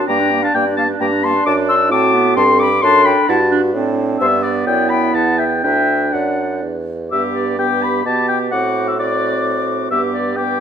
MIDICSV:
0, 0, Header, 1, 6, 480
1, 0, Start_track
1, 0, Key_signature, 1, "major"
1, 0, Tempo, 458365
1, 86, Time_signature, 3, 2, 24, 8
1, 4886, Tempo, 487805
1, 7286, Tempo, 464756
1, 10897, End_track
2, 0, Start_track
2, 0, Title_t, "Oboe"
2, 0, Program_c, 0, 68
2, 89, Note_on_c, 0, 82, 113
2, 442, Note_off_c, 0, 82, 0
2, 462, Note_on_c, 0, 81, 86
2, 562, Note_off_c, 0, 81, 0
2, 568, Note_on_c, 0, 79, 104
2, 676, Note_off_c, 0, 79, 0
2, 804, Note_on_c, 0, 81, 97
2, 913, Note_off_c, 0, 81, 0
2, 1058, Note_on_c, 0, 82, 95
2, 1296, Note_on_c, 0, 84, 115
2, 1312, Note_off_c, 0, 82, 0
2, 1522, Note_off_c, 0, 84, 0
2, 1529, Note_on_c, 0, 86, 115
2, 1634, Note_off_c, 0, 86, 0
2, 1767, Note_on_c, 0, 88, 119
2, 1995, Note_off_c, 0, 88, 0
2, 2003, Note_on_c, 0, 86, 121
2, 2470, Note_off_c, 0, 86, 0
2, 2475, Note_on_c, 0, 84, 119
2, 2717, Note_on_c, 0, 86, 116
2, 2732, Note_off_c, 0, 84, 0
2, 2952, Note_on_c, 0, 84, 127
2, 2968, Note_off_c, 0, 86, 0
2, 3199, Note_on_c, 0, 83, 112
2, 3214, Note_off_c, 0, 84, 0
2, 3445, Note_on_c, 0, 81, 111
2, 3460, Note_off_c, 0, 83, 0
2, 3682, Note_off_c, 0, 81, 0
2, 4396, Note_on_c, 0, 76, 121
2, 4636, Note_on_c, 0, 74, 92
2, 4652, Note_off_c, 0, 76, 0
2, 4878, Note_off_c, 0, 74, 0
2, 4885, Note_on_c, 0, 79, 111
2, 5110, Note_on_c, 0, 83, 98
2, 5124, Note_off_c, 0, 79, 0
2, 5358, Note_on_c, 0, 81, 94
2, 5373, Note_off_c, 0, 83, 0
2, 5589, Note_on_c, 0, 79, 89
2, 5604, Note_off_c, 0, 81, 0
2, 5836, Note_off_c, 0, 79, 0
2, 5840, Note_on_c, 0, 79, 102
2, 6329, Note_on_c, 0, 78, 78
2, 6343, Note_off_c, 0, 79, 0
2, 6811, Note_off_c, 0, 78, 0
2, 7296, Note_on_c, 0, 76, 103
2, 7403, Note_off_c, 0, 76, 0
2, 7540, Note_on_c, 0, 74, 75
2, 7773, Note_off_c, 0, 74, 0
2, 7784, Note_on_c, 0, 79, 104
2, 8031, Note_on_c, 0, 83, 94
2, 8047, Note_off_c, 0, 79, 0
2, 8265, Note_off_c, 0, 83, 0
2, 8272, Note_on_c, 0, 81, 96
2, 8496, Note_off_c, 0, 81, 0
2, 8502, Note_on_c, 0, 79, 96
2, 8610, Note_off_c, 0, 79, 0
2, 8743, Note_on_c, 0, 78, 98
2, 9115, Note_on_c, 0, 76, 75
2, 9130, Note_off_c, 0, 78, 0
2, 9227, Note_off_c, 0, 76, 0
2, 9237, Note_on_c, 0, 74, 91
2, 9930, Note_off_c, 0, 74, 0
2, 10181, Note_on_c, 0, 76, 101
2, 10287, Note_off_c, 0, 76, 0
2, 10422, Note_on_c, 0, 74, 82
2, 10650, Note_on_c, 0, 79, 104
2, 10666, Note_off_c, 0, 74, 0
2, 10897, Note_off_c, 0, 79, 0
2, 10897, End_track
3, 0, Start_track
3, 0, Title_t, "Flute"
3, 0, Program_c, 1, 73
3, 80, Note_on_c, 1, 79, 91
3, 448, Note_on_c, 1, 77, 78
3, 464, Note_off_c, 1, 79, 0
3, 562, Note_off_c, 1, 77, 0
3, 569, Note_on_c, 1, 74, 89
3, 804, Note_off_c, 1, 74, 0
3, 813, Note_on_c, 1, 77, 82
3, 876, Note_off_c, 1, 77, 0
3, 1047, Note_on_c, 1, 79, 75
3, 1110, Note_off_c, 1, 79, 0
3, 1292, Note_on_c, 1, 81, 90
3, 1522, Note_off_c, 1, 81, 0
3, 1532, Note_on_c, 1, 81, 115
3, 1595, Note_off_c, 1, 81, 0
3, 1767, Note_on_c, 1, 84, 94
3, 1830, Note_off_c, 1, 84, 0
3, 2008, Note_on_c, 1, 81, 96
3, 2472, Note_off_c, 1, 81, 0
3, 2486, Note_on_c, 1, 81, 92
3, 2549, Note_off_c, 1, 81, 0
3, 2727, Note_on_c, 1, 83, 92
3, 2959, Note_off_c, 1, 83, 0
3, 2970, Note_on_c, 1, 81, 110
3, 3193, Note_off_c, 1, 81, 0
3, 3200, Note_on_c, 1, 79, 88
3, 3435, Note_off_c, 1, 79, 0
3, 3447, Note_on_c, 1, 78, 86
3, 3510, Note_off_c, 1, 78, 0
3, 4401, Note_on_c, 1, 72, 100
3, 4464, Note_off_c, 1, 72, 0
3, 4646, Note_on_c, 1, 71, 67
3, 4709, Note_off_c, 1, 71, 0
3, 4890, Note_on_c, 1, 74, 87
3, 5116, Note_off_c, 1, 74, 0
3, 5121, Note_on_c, 1, 79, 84
3, 5352, Note_off_c, 1, 79, 0
3, 5357, Note_on_c, 1, 78, 84
3, 5587, Note_off_c, 1, 78, 0
3, 5593, Note_on_c, 1, 76, 69
3, 5652, Note_off_c, 1, 76, 0
3, 5839, Note_on_c, 1, 76, 79
3, 6318, Note_off_c, 1, 76, 0
3, 6324, Note_on_c, 1, 74, 55
3, 6799, Note_off_c, 1, 74, 0
3, 7282, Note_on_c, 1, 86, 68
3, 7736, Note_off_c, 1, 86, 0
3, 7774, Note_on_c, 1, 86, 74
3, 8248, Note_off_c, 1, 86, 0
3, 8256, Note_on_c, 1, 86, 69
3, 8729, Note_off_c, 1, 86, 0
3, 8745, Note_on_c, 1, 86, 71
3, 9213, Note_off_c, 1, 86, 0
3, 9231, Note_on_c, 1, 86, 74
3, 10160, Note_off_c, 1, 86, 0
3, 10186, Note_on_c, 1, 86, 72
3, 10647, Note_off_c, 1, 86, 0
3, 10656, Note_on_c, 1, 86, 69
3, 10897, Note_off_c, 1, 86, 0
3, 10897, End_track
4, 0, Start_track
4, 0, Title_t, "Clarinet"
4, 0, Program_c, 2, 71
4, 90, Note_on_c, 2, 58, 69
4, 202, Note_on_c, 2, 62, 60
4, 218, Note_off_c, 2, 58, 0
4, 325, Note_on_c, 2, 58, 65
4, 341, Note_off_c, 2, 62, 0
4, 447, Note_on_c, 2, 62, 57
4, 463, Note_off_c, 2, 58, 0
4, 561, Note_off_c, 2, 62, 0
4, 567, Note_on_c, 2, 58, 68
4, 691, Note_on_c, 2, 62, 62
4, 707, Note_off_c, 2, 58, 0
4, 809, Note_on_c, 2, 58, 63
4, 824, Note_off_c, 2, 62, 0
4, 924, Note_on_c, 2, 62, 67
4, 940, Note_off_c, 2, 58, 0
4, 1046, Note_off_c, 2, 62, 0
4, 1051, Note_on_c, 2, 58, 67
4, 1170, Note_on_c, 2, 62, 64
4, 1186, Note_off_c, 2, 58, 0
4, 1289, Note_on_c, 2, 58, 68
4, 1304, Note_off_c, 2, 62, 0
4, 1407, Note_on_c, 2, 62, 61
4, 1423, Note_off_c, 2, 58, 0
4, 1522, Note_off_c, 2, 62, 0
4, 1528, Note_on_c, 2, 62, 74
4, 2000, Note_on_c, 2, 60, 85
4, 2016, Note_off_c, 2, 62, 0
4, 2239, Note_on_c, 2, 59, 81
4, 2254, Note_off_c, 2, 60, 0
4, 2475, Note_on_c, 2, 60, 81
4, 2491, Note_off_c, 2, 59, 0
4, 2818, Note_off_c, 2, 60, 0
4, 2962, Note_on_c, 2, 62, 73
4, 3431, Note_off_c, 2, 62, 0
4, 3443, Note_on_c, 2, 64, 84
4, 3550, Note_off_c, 2, 64, 0
4, 3679, Note_on_c, 2, 62, 80
4, 3786, Note_off_c, 2, 62, 0
4, 3921, Note_on_c, 2, 60, 68
4, 4406, Note_on_c, 2, 59, 76
4, 4422, Note_off_c, 2, 60, 0
4, 5842, Note_on_c, 2, 62, 59
4, 5857, Note_off_c, 2, 59, 0
4, 7054, Note_off_c, 2, 62, 0
4, 7298, Note_on_c, 2, 67, 68
4, 7745, Note_off_c, 2, 67, 0
4, 7786, Note_on_c, 2, 67, 67
4, 8254, Note_off_c, 2, 67, 0
4, 8268, Note_on_c, 2, 67, 66
4, 8754, Note_on_c, 2, 66, 67
4, 8769, Note_off_c, 2, 67, 0
4, 9227, Note_off_c, 2, 66, 0
4, 9233, Note_on_c, 2, 66, 71
4, 10161, Note_off_c, 2, 66, 0
4, 10184, Note_on_c, 2, 67, 68
4, 10646, Note_off_c, 2, 67, 0
4, 10657, Note_on_c, 2, 67, 65
4, 10897, Note_off_c, 2, 67, 0
4, 10897, End_track
5, 0, Start_track
5, 0, Title_t, "French horn"
5, 0, Program_c, 3, 60
5, 85, Note_on_c, 3, 62, 87
5, 1994, Note_on_c, 3, 66, 87
5, 2009, Note_off_c, 3, 62, 0
5, 2479, Note_on_c, 3, 69, 97
5, 2495, Note_off_c, 3, 66, 0
5, 2816, Note_off_c, 3, 69, 0
5, 2957, Note_on_c, 3, 69, 92
5, 3429, Note_off_c, 3, 69, 0
5, 3440, Note_on_c, 3, 66, 95
5, 3909, Note_off_c, 3, 66, 0
5, 3921, Note_on_c, 3, 62, 81
5, 4580, Note_off_c, 3, 62, 0
5, 4888, Note_on_c, 3, 64, 84
5, 5841, Note_on_c, 3, 62, 65
5, 5856, Note_off_c, 3, 64, 0
5, 7054, Note_off_c, 3, 62, 0
5, 7295, Note_on_c, 3, 59, 66
5, 7743, Note_off_c, 3, 59, 0
5, 7781, Note_on_c, 3, 59, 70
5, 8252, Note_off_c, 3, 59, 0
5, 8264, Note_on_c, 3, 59, 67
5, 8733, Note_off_c, 3, 59, 0
5, 8745, Note_on_c, 3, 60, 68
5, 9213, Note_off_c, 3, 60, 0
5, 9227, Note_on_c, 3, 60, 72
5, 10184, Note_on_c, 3, 59, 66
5, 10200, Note_off_c, 3, 60, 0
5, 10649, Note_off_c, 3, 59, 0
5, 10655, Note_on_c, 3, 59, 69
5, 10897, Note_off_c, 3, 59, 0
5, 10897, End_track
6, 0, Start_track
6, 0, Title_t, "Bassoon"
6, 0, Program_c, 4, 70
6, 88, Note_on_c, 4, 43, 83
6, 512, Note_off_c, 4, 43, 0
6, 574, Note_on_c, 4, 43, 77
6, 994, Note_off_c, 4, 43, 0
6, 1055, Note_on_c, 4, 43, 87
6, 1471, Note_off_c, 4, 43, 0
6, 1532, Note_on_c, 4, 42, 91
6, 2000, Note_on_c, 4, 45, 86
6, 2016, Note_off_c, 4, 42, 0
6, 2475, Note_off_c, 4, 45, 0
6, 2481, Note_on_c, 4, 43, 96
6, 2952, Note_off_c, 4, 43, 0
6, 2959, Note_on_c, 4, 42, 96
6, 3301, Note_off_c, 4, 42, 0
6, 3442, Note_on_c, 4, 43, 86
6, 3922, Note_on_c, 4, 45, 87
6, 3938, Note_off_c, 4, 43, 0
6, 4396, Note_off_c, 4, 45, 0
6, 4403, Note_on_c, 4, 43, 88
6, 4878, Note_off_c, 4, 43, 0
6, 4890, Note_on_c, 4, 42, 77
6, 5348, Note_off_c, 4, 42, 0
6, 5355, Note_on_c, 4, 40, 72
6, 5829, Note_off_c, 4, 40, 0
6, 5846, Note_on_c, 4, 38, 70
6, 6325, Note_off_c, 4, 38, 0
6, 6337, Note_on_c, 4, 42, 66
6, 6820, Note_on_c, 4, 40, 68
6, 6835, Note_off_c, 4, 42, 0
6, 7291, Note_off_c, 4, 40, 0
6, 7297, Note_on_c, 4, 43, 76
6, 8221, Note_off_c, 4, 43, 0
6, 8267, Note_on_c, 4, 47, 76
6, 8748, Note_on_c, 4, 45, 75
6, 8763, Note_off_c, 4, 47, 0
6, 10175, Note_off_c, 4, 45, 0
6, 10181, Note_on_c, 4, 43, 72
6, 10897, Note_off_c, 4, 43, 0
6, 10897, End_track
0, 0, End_of_file